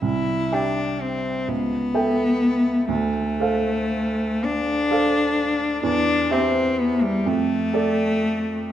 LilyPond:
<<
  \new Staff \with { instrumentName = "Grand piano" } { \time 6/8 \key c \major \tempo 4. = 42 c,8 <g' e'' g''>4 cis,8 <a' e'' g''>4 | d,8 <a' c'' f''>4. <a' c'' f''>4 | e,8 <g' c'' e''>4 f,8 <a' d''>4 | }
  \new Staff \with { instrumentName = "Cello" } { \time 6/8 \key c \major e'8 d'8 c'8 b4. | a4. d'4. | d'8 c'8 b16 g16 a4. | }
>>